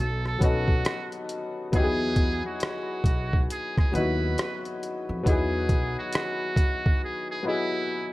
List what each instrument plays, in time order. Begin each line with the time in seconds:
Already playing: upright bass B1
0.00 muted trumpet A4
0.25 muted trumpet A4, cross-stick
0.38 upright bass B1, upright piano F#3 B3 C#4, kick, closed hi-hat
0.43 upright piano D#4 A4, muted trumpet F#4
0.68 kick
0.85 cross-stick, closed hi-hat
1.12 closed hi-hat
1.29 closed hi-hat
1.72 upright bass E2, upright piano F#3 B3 D#4, muted trumpet G#4, kick, closed hi-hat
1.76 upright piano E4 G4
1.84 upright piano G#4
2.16 kick, closed hi-hat
2.46 muted trumpet F#4
2.60 cross-stick, closed hi-hat
3.04 upright bass B1, kick, closed hi-hat
3.33 kick
3.50 muted trumpet G#4, closed hi-hat
3.77 muted trumpet G#4, kick, cross-stick
3.92 upright bass D#2, upright piano F#3 B3 D#4, muted trumpet B4, closed hi-hat
3.97 upright piano E4 F#4
4.38 cross-stick, closed hi-hat
4.65 closed hi-hat
4.83 closed hi-hat
5.09 upright bass F2
5.24 upright bass E2, upright piano F#3 B3 D#4, kick, closed hi-hat
5.28 upright piano E4 G#4, muted trumpet G#4
5.69 upright bass B1, kick, closed hi-hat
5.99 muted trumpet F#4
6.13 cross-stick, closed hi-hat
6.56 kick, closed hi-hat
6.86 kick
7.04 muted trumpet G#4
7.31 muted trumpet G#4
7.43 upright piano F#3 B3 D#5
7.47 upright piano E4 G#4, muted trumpet E4